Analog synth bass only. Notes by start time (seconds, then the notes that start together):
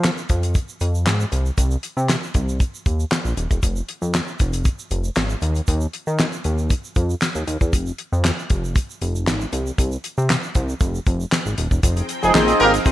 Already playing: F3
0.30 F2
0.81 F2
1.06 G#2
1.32 C2
1.58 C2
1.97 C3
2.35 C2
2.86 D#2
3.25 A#1
3.37 D#1
3.51 E1
3.63 F1
4.02 F2
4.40 F1
4.91 F1
5.16 G#1
5.42 D#2
5.68 D#2
6.07 D#3
6.45 D#2
6.96 F2
7.35 D#2
7.47 D#2
7.61 E2
7.73 F1
8.12 F2
8.50 F1
9.02 F1
9.27 G#1
9.53 C2
9.78 C2
10.18 C3
10.56 C2
10.81 F1
11.07 F1
11.46 G#1
11.58 D#1
11.71 E1
11.83 F1
12.23 F1
12.34 A#1
12.60 G#1
12.86 C2